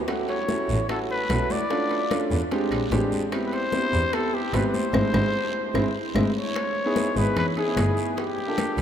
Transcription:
0.07 grand piano A3 C#4 E4 F#4, high bongo, high conga, high timbale, long guiro, claves
0.28 trumpet C#5, high bongo, high conga, high timbale
0.48 grand piano A3 C#4 E4 F#4, high bongo, high conga, low timbale, short guiro
0.69 double bass A1, high conga, short guiro
0.89 grand piano A3 C#4 E4 F#4, trumpet A4, high bongo, high conga, high timbale, long guiro, claves
1.10 trumpet B4, high bongo, high conga
1.29 double bass B1, grand piano A3 C#4 E4 F#4, high bongo, low bongo, high conga, high timbale, low timbale, short guiro, claves
1.50 trumpet D5, high bongo, high conga, short guiro
1.70 grand piano A3 C#4 D4 F4, high bongo, high conga, high timbale, long guiro
1.91 high bongo, high conga, high timbale
2.10 grand piano A3 C#4 D4 F4, high bongo, high conga, high timbale, low timbale, short guiro, claves
2.31 double bass E2, high conga, short guiro
2.51 grand piano G#3 C4 D4 G4, high bongo, high conga, high timbale, long guiro
2.71 double bass A#1, high conga, high timbale, claves
2.92 double bass A1, grand piano G#3 C4 D4 G4, high bongo, low bongo, high conga, high timbale, low timbale, short guiro
3.12 high bongo, high conga, short guiro
3.32 grand piano B3 C4 E4 G4, high bongo, high conga, high timbale, long guiro, claves
3.46 trumpet B4
3.52 trumpet C5, high bongo, high conga, high timbale
3.72 grand piano B3 C4 E4 G4, high bongo, high conga, low timbale, short guiro
3.93 double bass E2, high conga, short guiro
4.12 grand piano B3 C4 E4 G4, trumpet A4, high bongo, high conga, high timbale, long guiro, claves
4.33 trumpet G4, high bongo, high conga
4.53 double bass G#1, grand piano B3 C4 E4 G4, trumpet B4, high bongo, low bongo, high conga, high timbale, low timbale, short guiro, claves
4.67 trumpet B4
4.74 trumpet C5, high bongo, high conga, short guiro
4.93 double bass G#1, grand piano G#3 C4 E4, high bongo, high conga, high timbale, long guiro, claves
5.14 double bass G#1, grand piano G#3 C4 E4, high bongo, high conga, high timbale, long guiro, claves
5.74 double bass G#1, grand piano G#3 C4 E4, high bongo, high conga, high timbale, long guiro, claves
6.15 double bass G#1, grand piano G#3 C4 E4, high bongo, high conga, high timbale, long guiro, claves
6.36 trumpet C#5
6.56 high bongo, high conga, high timbale, claves
6.76 high conga
6.85 grand piano B3 D#4 E4 G#4
6.96 high bongo, high conga, high timbale, short guiro
7.15 double bass G#1, grand piano B3 D#4 E4 G#4, trumpet B4, high conga, short guiro
7.36 trumpet B4, high bongo, high conga, low conga, high timbale, long guiro, claves
7.56 grand piano B3 D#4 E4 G#4, trumpet G#4, high conga, high timbale
7.66 grand piano B3 D#4 E4 G#4
7.77 double bass G1, high bongo, low bongo, high conga, high timbale, short guiro, claves
7.97 high conga, short guiro
8.17 trumpet G4, high bongo, high conga, high timbale, long guiro
8.38 high bongo, high conga
8.47 grand piano A#3 D4 F4 A4
8.58 high bongo, high conga, high timbale, short guiro, claves
8.78 double bass C2, high bongo, high conga, high timbale, short guiro

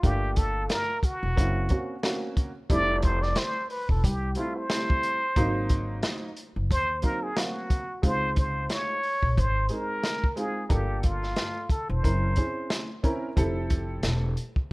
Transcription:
0.03 upright bass G1, upright piano A3 A#3 D4 F4, muted trumpet G4, kick, closed hi-hat
0.36 muted trumpet A4, kick, closed hi-hat
0.69 muted trumpet A#4, snare, closed hi-hat
1.03 muted trumpet F#4, kick, closed hi-hat
1.23 upright bass E1
1.36 upright bass F#1, upright piano A#3 C4 C#4 E4, kick, closed hi-hat
1.69 upright piano A#3 C4 C#4 F#4, kick, closed hi-hat
2.03 upright piano A#3 C4 C#4 F#4, snare, closed hi-hat
2.37 kick, closed hi-hat
2.69 upright bass F1, upright piano G3 A3 C4 E4, muted trumpet D5, kick, closed hi-hat
3.02 muted trumpet C5, kick, closed hi-hat
3.23 muted trumpet D5, snare
3.35 muted trumpet C5, snare, closed hi-hat
3.70 muted trumpet B4, open hi-hat
3.89 upright bass E1, muted trumpet A4, kick
4.04 upright bass C2, muted trumpet G4, kick, closed hi-hat
4.35 upright piano G3 A3 C4 E4, muted trumpet F4, closed hi-hat
4.57 muted trumpet C5
4.69 upright piano G3 A3 C4 E4, snare, closed hi-hat
4.90 kick
5.03 closed hi-hat
5.36 upright bass G#1, upright piano F#3 A#3 C4 D#4, kick, closed hi-hat
5.69 kick, closed hi-hat
6.03 snare, closed hi-hat
6.37 closed hi-hat
6.56 upright bass F#1
6.71 upright bass D#2, muted trumpet C5, kick, closed hi-hat
7.02 upright piano F#3 A#3 C4 D#4, muted trumpet A#4, kick, closed hi-hat
7.23 muted trumpet G#4
7.36 upright piano F#3 A#3 C4 F5, muted trumpet F#4, snare, closed hi-hat
7.70 kick, closed hi-hat
8.02 upright bass C#2, upright piano G#3 C4 D#4 F4, muted trumpet C5, kick, closed hi-hat
8.36 muted trumpet C5, kick, closed hi-hat
8.70 muted trumpet C#5, snare, closed hi-hat
9.03 open hi-hat
9.23 upright bass A#1, kick
9.38 upright bass G#1, muted trumpet C5, kick, closed hi-hat
9.69 upright piano G#3 C4 D#4 G#4, muted trumpet A#4, closed hi-hat
10.04 snare, closed hi-hat
10.24 kick
10.36 upright piano G#3 C4 D#4 F4, muted trumpet G#4, closed hi-hat
10.69 upright bass G1, upright piano A#3 D4 F4 A4, muted trumpet G4, kick, closed hi-hat
11.03 muted trumpet F4, kick, closed hi-hat
11.23 snare
11.36 snare, closed hi-hat
11.70 muted trumpet A4, kick, closed hi-hat
11.89 upright bass E1, muted trumpet C5
12.03 upright bass F#1, upright piano C4 C#4 E4 A#4, kick, closed hi-hat
12.36 upright piano C4 C#4 E4 G#4, kick, closed hi-hat
12.70 snare, closed hi-hat
13.03 upright piano C4 C#4 E4 A#4, kick, closed hi-hat
13.36 upright bass F1, upright piano C4 E4 G4 A4, kick, closed hi-hat
13.70 kick, closed hi-hat
14.03 upright bass E1, snare, closed hi-hat
14.37 closed hi-hat
14.56 kick

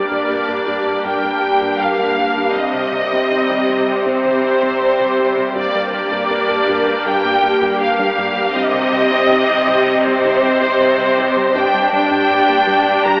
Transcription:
Already playing: cello section G2, analog synth pad G3 D4 G4 A#4, viola section A#3 G4, violin section D5
0.11 analog synth bass G2, synth arpeggio sound G3
0.30 analog synth bass G2, synth arpeggio sound A#3
0.48 analog synth bass G2, synth arpeggio sound A#3
0.67 analog synth bass G2, synth arpeggio sound G3
0.86 analog synth bass G2
1.05 analog synth bass G2, synth arpeggio sound G3, violin section G5
1.24 analog synth bass G2, synth arpeggio sound A#3
1.43 analog synth bass G2, synth arpeggio sound G4
1.62 analog synth bass G2, synth arpeggio sound G3
1.79 analog synth bass G2, synth arpeggio sound G4, violin section F5
1.99 analog synth bass G3, synth arpeggio sound D4
2.18 analog synth bass G2, synth arpeggio sound G3
2.37 analog synth bass G3, synth arpeggio sound D4
2.54 analog synth bass C2, cello section C3, synth arpeggio sound C3, analog synth pad C4 C5, viola section C4, violin section D#5
2.74 analog synth bass C3
2.92 analog synth bass C3
3.12 analog synth bass C2, synth arpeggio sound C3
3.30 analog synth bass C2, synth arpeggio sound D#3
3.49 analog synth bass C2, synth arpeggio sound D#3
3.68 analog synth bass C2, synth arpeggio sound C3
3.87 analog synth bass C2
4.05 analog synth bass C2, synth arpeggio sound C3, violin section C5
4.24 analog synth bass C2, synth arpeggio sound D#3
4.43 analog synth bass C2, synth arpeggio sound C4
4.63 analog synth bass C2, synth arpeggio sound C3
4.81 analog synth bass C2, synth arpeggio sound C4
5.00 analog synth bass C3, synth arpeggio sound G3
5.18 analog synth bass C2, synth arpeggio sound C3
5.37 analog synth bass C3, synth arpeggio sound G3
5.54 analog synth bass G2, cello section G2, analog synth pad G3 D4 G4 A#4, synth arpeggio sound G3, viola section A#3 G4, violin section D5, taiko
5.75 analog synth bass G3
5.93 analog synth bass G3, violin section D5
6.11 analog synth bass G2, synth arpeggio sound G3
6.30 analog synth bass G2, synth arpeggio sound A#3
6.49 analog synth bass G2, synth arpeggio sound A#3
6.68 analog synth bass G2, synth arpeggio sound G3
6.87 analog synth bass G2
7.06 analog synth bass G2, synth arpeggio sound G3, violin section G5
7.24 analog synth bass G2, synth arpeggio sound A#3
7.43 analog synth bass G2, synth arpeggio sound G4
7.61 analog synth bass G2, synth arpeggio sound G3
7.81 analog synth bass G2, synth arpeggio sound G4, violin section F5
7.99 analog synth bass G3, synth arpeggio sound D4
8.18 analog synth bass G2, synth arpeggio sound G3
8.37 analog synth bass G3, synth arpeggio sound D4
8.55 analog synth bass C2, synth arpeggio sound C3, cello section C3, viola section C4, analog synth pad C4 D#5, violin section D#5
8.74 analog synth bass C3
8.92 analog synth bass C3
9.11 analog synth bass C2, synth arpeggio sound C3
9.30 analog synth bass C2, synth arpeggio sound D#3
9.48 analog synth bass C2, synth arpeggio sound D#3
9.68 analog synth bass C2, synth arpeggio sound C3
9.86 analog synth bass C2
10.05 analog synth bass C2, synth arpeggio sound C3, violin section C5
10.24 analog synth bass C2, synth arpeggio sound D#3
10.43 analog synth bass C2, synth arpeggio sound C4
10.61 analog synth bass C2, synth arpeggio sound C3
10.80 analog synth bass C2, synth arpeggio sound C4
10.97 analog synth bass C3, synth arpeggio sound G3
11.17 analog synth bass C2, synth arpeggio sound C3
11.36 analog synth bass C3, synth arpeggio sound G3
11.55 analog synth bass G2, cello section G2, synth arpeggio sound G3, analog synth pad G3 D4 G4 D5, viola section D4 G4, violin section G5, taiko
11.74 analog synth bass G3
11.93 analog synth bass G3, violin section G5
12.11 analog synth bass G2, synth arpeggio sound G3
12.30 analog synth bass G2, synth arpeggio sound A#3
12.49 analog synth bass G2, synth arpeggio sound A#3
12.67 analog synth bass G2, synth arpeggio sound G3
12.86 analog synth bass G2
13.06 analog synth bass G2, synth arpeggio sound G3, violin section A#5

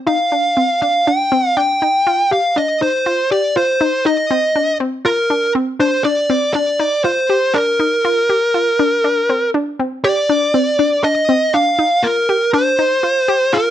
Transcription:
0.07 synth arpeggio sound D#4, lead electric guitar F5
0.32 synth arpeggio sound D4
0.57 synth arpeggio sound C4
0.82 synth arpeggio sound D4, lead electric guitar F5
1.07 synth arpeggio sound D4, lead electric guitar G5
1.32 synth arpeggio sound C4
1.57 synth arpeggio sound D4, lead electric guitar G5
1.82 synth arpeggio sound D#4
2.07 synth arpeggio sound F4
2.31 synth arpeggio sound G4, lead electric guitar F5
2.56 synth arpeggio sound D4, lead electric guitar D#5
2.81 synth arpeggio sound D#4, lead electric guitar C5
3.06 synth arpeggio sound F4
3.31 synth arpeggio sound G4, lead electric guitar D5
3.56 synth arpeggio sound F4, lead electric guitar C5
3.81 synth arpeggio sound D#4
4.06 synth arpeggio sound D#4, lead electric guitar D#5
4.31 synth arpeggio sound C4
4.56 synth arpeggio sound D4
4.80 synth arpeggio sound C4
5.05 synth arpeggio sound F4, lead electric guitar A#4
5.30 synth arpeggio sound D4
5.55 synth arpeggio sound C4
5.80 synth arpeggio sound D4, lead electric guitar C5
6.04 synth arpeggio sound D4, lead electric guitar D5
6.30 synth arpeggio sound C4
6.54 synth arpeggio sound D4, lead electric guitar D5
6.80 synth arpeggio sound D#4
7.04 synth arpeggio sound F4, lead electric guitar C5
7.30 synth arpeggio sound G4
7.54 synth arpeggio sound D4, lead electric guitar A#4
7.80 synth arpeggio sound D#4
8.05 synth arpeggio sound F4
8.29 synth arpeggio sound G4
8.54 synth arpeggio sound F4
8.79 synth arpeggio sound D4
9.04 synth arpeggio sound D4
9.29 synth arpeggio sound C4
9.54 synth arpeggio sound D4
9.79 synth arpeggio sound C4
10.04 synth arpeggio sound G4, lead electric guitar D5
10.29 synth arpeggio sound D4
10.54 synth arpeggio sound C4
10.79 synth arpeggio sound D4
11.04 synth arpeggio sound D4, lead electric guitar D#5
11.29 synth arpeggio sound C4
11.54 synth arpeggio sound D4, lead electric guitar F5
11.79 synth arpeggio sound D#4
12.03 synth arpeggio sound F4, lead electric guitar A#4
12.29 synth arpeggio sound G4
12.54 synth arpeggio sound D4, lead electric guitar C5
12.79 synth arpeggio sound D#4
13.03 synth arpeggio sound F4
13.28 synth arpeggio sound G4
13.53 synth arpeggio sound F4, lead electric guitar A#4

